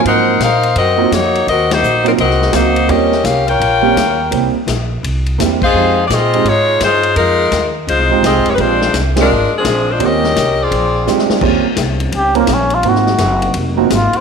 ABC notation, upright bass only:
X:1
M:4/4
L:1/8
Q:"Swing" 1/4=169
K:Ebmix
V:1 name="Upright bass" clef=bass
A,,2 B,,2 _G,,2 F,,2 | E,,2 B,,,2 C,,2 D,,2 | E,,2 C,,2 B,,,2 E,,2 | C,, z B,,,2 C,,2 =E,,2 |
F,,2 B,,2 A,,2 G,,2 | F,,2 E,,2 (3D,, C,, A,,, (3C,, A,,, F,,, | B,,,2 C,,2 A,,, z B,,,2 | E,,2 C,,2 B,,,2 =D,, z |
E,, z C,,2 D,,2 B,,,2 | A,,,2 _G,,,2 F,,,2 A,,, z |]